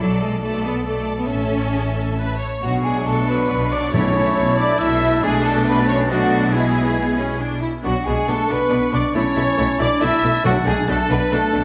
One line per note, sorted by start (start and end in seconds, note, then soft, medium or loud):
0.00 1.26 B1 medium
0.00 0.20 F#3 medium
0.00 0.39 A4 medium
0.00 0.40 D5 soft
0.00 0.40 A5 medium
0.20 0.42 G#3 medium
0.41 0.63 A3 medium
0.41 0.84 A4 soft
0.41 0.85 D5 soft
0.41 0.86 A5 medium
0.63 0.85 B3 medium
0.85 1.18 A3 medium
0.85 1.29 A4 soft
0.85 1.30 D5 soft
0.85 1.29 A5 soft
1.18 1.30 B3 soft
1.28 2.40 A1 soft
1.28 2.18 C#4 medium
1.28 1.69 A4 soft
1.28 2.40 E5 soft
1.28 2.40 A5 soft
1.72 1.80 G#4 medium
1.95 2.18 A4 soft
2.18 2.40 B4 soft
2.39 2.61 C#5 soft
2.62 3.01 B1 medium
2.62 3.01 B2 medium
2.62 2.73 F#3 medium
2.62 3.91 D4 soft
2.62 2.83 F#4 medium
2.62 2.84 F#4 medium
2.62 2.86 F#5 medium
2.62 3.90 C#6 soft
2.83 3.26 F#3 soft
2.83 3.06 G#3 soft
2.83 3.27 D4 soft
2.83 3.06 G#4 medium
2.83 3.07 G#4 soft
2.83 3.07 G#5 medium
3.05 3.44 B1 medium
3.05 3.45 B2 soft
3.05 3.29 A3 medium
3.05 3.28 A4 medium
3.05 3.27 A5 medium
3.27 3.70 F#3 soft
3.27 3.71 B3 medium
3.27 3.70 D4 soft
3.27 3.71 B4 medium
3.27 3.73 B4 medium
3.27 3.73 B5 medium
3.50 3.88 B1 medium
3.50 3.89 B2 medium
3.71 3.93 F#3 soft
3.71 3.93 D4 soft
3.71 3.83 D4 medium
3.71 3.93 D5 medium
3.71 3.94 D5 medium
3.71 3.92 D6 soft
3.92 4.32 B1 medium
3.92 4.31 B2 medium
3.92 4.54 B2 medium
3.92 4.13 A3 soft
3.92 4.58 C#4 medium
3.92 4.13 E4 soft
3.92 5.21 E4 medium
3.92 4.57 C#5 medium
3.92 4.59 C#5 medium
3.92 5.20 A5 medium
3.92 4.57 C#6 medium
4.14 4.55 A3 soft
4.14 4.55 E4 soft
4.37 4.75 B1 medium
4.37 4.75 B2 medium
4.57 4.99 A3 medium
4.57 4.79 D4 medium
4.57 5.00 E4 soft
4.57 4.80 D5 medium
4.57 4.80 D6 medium
4.79 5.18 B1 medium
4.79 5.18 B2 medium
4.79 5.22 E4 medium
4.79 5.23 E5 medium
4.79 5.26 E6 medium
5.01 5.20 A3 medium
5.01 5.22 E4 medium
5.21 7.62 B1 medium
5.21 7.61 B2 medium
5.21 5.45 G#3 medium
5.21 6.05 A3 medium
5.21 6.05 D4 medium
5.21 6.06 D4 medium
5.21 5.45 G#4 medium
5.21 5.32 G#4 medium
5.21 5.45 G#5 medium
5.21 6.06 A5 medium
5.44 5.54 A3 medium
5.44 5.67 A4 medium
5.44 5.66 A4 medium
5.44 5.66 A5 medium
5.65 5.87 B3 medium
5.65 5.88 B4 medium
5.65 5.88 B5 medium
5.87 6.09 C#4 medium
5.87 5.95 C#5 medium
5.87 5.98 C#5 medium
5.87 5.95 C#6 medium
6.09 6.54 F#3 medium
6.09 6.53 A3 medium
6.09 6.52 D4 medium
6.09 6.57 D4 medium
6.09 6.52 F#4 medium
6.09 6.53 F#4 medium
6.09 6.53 F#5 medium
6.09 6.54 A5 medium
6.51 7.42 G#3 medium
6.51 6.92 B3 medium
6.51 6.93 E4 medium
6.51 7.64 E4 medium
6.51 7.40 G#4 medium
6.51 7.63 G#5 medium
6.56 7.41 G#5 medium
6.97 7.18 B3 medium
7.18 7.41 C#4 soft
7.40 7.63 D4 medium
7.61 7.69 E4 soft
7.83 7.93 B1 medium
7.83 7.92 B2 medium
7.83 7.95 F#3 medium
7.83 7.92 B3 soft
7.83 7.91 D4 soft
7.83 9.11 D4 medium
7.83 8.05 F#4 medium
7.83 8.06 F#4 medium
7.83 8.07 F#5 medium
7.83 9.12 C#6 medium
8.05 8.16 B1 medium
8.05 8.14 B2 medium
8.05 8.28 G#3 medium
8.05 8.15 B3 soft
8.05 8.14 D4 soft
8.05 8.29 G#4 medium
8.05 8.28 G#4 medium
8.05 8.31 G#5 medium
8.28 8.37 B1 medium
8.28 8.36 B2 soft
8.28 8.50 A3 medium
8.28 8.36 B3 medium
8.28 8.36 D4 soft
8.28 8.51 A4 medium
8.28 8.54 A5 medium
8.48 8.59 B1 soft
8.48 8.58 B2 soft
8.48 8.56 B3 soft
8.48 8.93 B3 medium
8.48 8.57 D4 soft
8.48 8.94 B4 medium
8.53 8.96 B5 medium
8.70 8.81 B1 medium
8.70 8.79 B2 medium
8.70 8.78 B3 medium
8.70 8.78 D4 medium
8.91 9.02 B1 medium
8.91 9.01 B2 medium
8.91 8.99 B3 soft
8.91 9.00 D4 soft
8.91 9.16 D4 medium
8.91 9.15 D5 medium
8.91 9.03 D5 medium
8.91 9.15 D6 medium
9.15 9.24 B1 medium
9.15 9.23 B2 medium
9.15 9.23 A3 medium
9.15 9.80 C#4 medium
9.15 10.01 E4 medium
9.15 9.23 E4 medium
9.15 9.79 C#5 medium
9.15 9.80 C#5 medium
9.15 10.01 A5 medium
9.15 9.84 C#6 medium
9.35 9.45 B1 medium
9.35 9.45 B2 medium
9.35 9.43 A3 soft
9.35 9.43 E4 soft
9.57 9.67 B1 medium
9.57 9.67 B2 medium
9.57 9.65 A3 medium
9.57 9.65 E4 medium
9.79 9.88 B1 medium
9.79 9.88 B2 medium
9.79 9.88 A3 medium
9.79 10.03 D4 medium
9.79 9.87 E4 soft
9.79 10.02 D5 medium
9.79 10.06 D6 medium
10.01 10.10 B1 medium
10.01 10.11 B2 medium
10.01 10.09 A3 medium
10.01 10.09 E4 medium
10.01 10.46 E4 medium
10.01 10.45 E5 medium
10.01 10.45 A5 medium
10.01 10.46 E6 medium
10.23 10.32 B1 medium
10.23 10.31 B2 medium
10.23 10.32 A3 medium
10.23 10.31 E4 medium
10.43 10.54 B1 medium
10.43 10.53 B2 medium
10.43 11.06 B2 medium
10.43 10.56 F#3 medium
10.43 10.52 A3 medium
10.43 10.51 D4 medium
10.43 10.88 D4 medium
10.43 10.53 F#4 medium
10.43 10.67 F#4 medium
10.43 10.69 F#5 medium
10.43 10.86 A5 medium
10.66 10.76 B1 medium
10.66 10.74 B2 medium
10.66 10.88 G#3 medium
10.66 10.74 A3 medium
10.66 10.74 D4 medium
10.66 10.88 G#4 medium
10.66 10.89 G#4 medium
10.66 10.89 G#5 medium
10.87 10.98 B1 medium
10.87 10.96 B2 medium
10.87 10.96 A3 medium
10.87 11.11 A3 medium
10.87 10.96 D4 medium
10.87 11.31 D4 medium
10.87 11.10 A4 medium
10.87 11.11 A4 medium
10.87 11.31 A5 medium
10.93 10.99 A5 medium
11.09 11.19 B1 medium
11.09 11.18 B2 medium
11.09 11.18 A3 medium
11.09 11.19 B3 medium
11.09 11.18 D4 medium
11.09 11.33 B4 medium
11.09 11.18 B5 medium
11.32 11.41 B1 medium
11.32 11.40 B2 medium
11.32 11.64 A3 medium
11.32 11.40 A3 medium
11.32 11.64 D4 medium
11.32 11.40 D4 medium
11.32 11.64 A4 medium
11.32 11.64 A5 medium
11.53 11.63 B1 medium
11.53 11.61 B2 medium
11.53 11.61 A3 medium
11.53 11.61 D4 soft